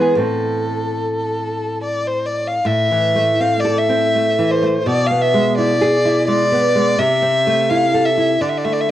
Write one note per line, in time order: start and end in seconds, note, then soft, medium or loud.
0.00 0.18 E3 medium
0.00 0.17 G#3 soft
0.00 0.18 B3 medium
0.00 0.19 G#4 medium
0.15 2.59 A2 medium
0.15 2.60 A3 soft
0.15 2.60 C4 soft
0.20 1.81 A4 medium
1.84 2.09 D5 medium
2.07 2.27 C5 medium
2.26 2.49 D5 medium
2.47 2.67 F5 medium
2.65 4.82 A2 medium
2.65 3.42 E5 medium
2.91 3.31 E3 soft
3.16 3.55 A3 medium
3.40 3.80 C4 medium
3.40 3.61 F5 medium
3.59 3.79 D5 medium
3.65 4.04 A4 medium
3.78 4.52 E5 medium
3.89 4.28 C4 medium
4.15 4.53 A3 medium
4.39 4.77 E3 medium
4.51 4.88 C5 medium
4.62 4.86 A3 medium
4.86 6.95 B2 medium
4.86 5.08 D5 loud
5.06 5.23 F5 medium
5.11 5.49 B3 medium
5.21 5.57 E5 medium
5.34 5.72 G#3 medium
5.58 5.95 E4 medium
5.58 6.27 D5 medium
5.81 6.19 G#4 medium
6.05 6.43 E4 medium
6.28 6.66 G#3 medium
6.28 7.00 D5 loud
6.52 6.89 B3 medium
6.75 6.99 G#3 medium
6.99 8.37 C3 medium
6.99 7.71 E5 loud
7.22 7.60 C4 medium
7.47 7.84 A3 medium
7.69 8.08 E4 medium
7.69 8.06 F5 loud
7.94 8.32 A4 medium
8.05 8.43 E5 loud
8.17 8.41 E4 medium
8.41 8.91 D3 medium
8.41 8.50 D5 medium
8.49 8.59 E5 medium
8.57 8.66 D5 medium
8.64 8.88 A3 medium
8.64 8.74 E5 medium
8.73 8.82 D5 medium
8.80 8.91 E5 medium